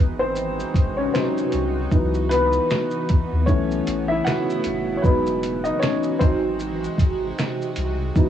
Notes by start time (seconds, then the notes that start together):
Already playing: G#1 C3 G#3 B3 D#4 F#4 B4
0.19 C4 C5
0.36 shaker
0.60 shaker
0.74 G#1, kick, closed hi-hat, shaker
0.97 C#4 C#5
1.14 F#3 C4 D#4 C5, finger snap, snare, shaker
1.38 shaker
1.52 C2, closed hi-hat, shaker
1.91 C#2 E3 F#3 B3 D#4, kick, shaker
2.14 shaker
2.29 B3 B4, closed hi-hat, shaker
2.53 shaker
2.71 finger snap, snare, shaker
2.91 shaker
3.09 kick, closed hi-hat, shaker
3.32 D#2
3.46 B1 C#3 E3 A3 C#4 E4 C#5, kick, shaker
3.71 shaker
3.87 A1, closed hi-hat, shaker
4.08 E4 E5
4.24 F#4 F#5, finger snap, snare, shaker
4.50 shaker
4.64 D#1, closed hi-hat, shaker
4.97 C#5
5.02 E1 E3 F#3 G#3 B3 D#4 F#4 B4, kick, shaker
5.26 shaker
5.43 closed hi-hat, shaker
5.64 D#4 D#5, shaker
5.79 C#4 C#5, finger snap, shaker
5.83 snare
6.03 shaker
6.19 G#1 C3 F#3 C4 D#4 C5, kick, closed hi-hat, shaker
6.59 shaker
6.84 shaker
6.98 G#1, kick, closed hi-hat, shaker
7.39 finger snap, snare, shaker
7.62 shaker
7.76 C2, closed hi-hat, shaker
8.15 C#2 E3 F#3 B3 D#4, kick, shaker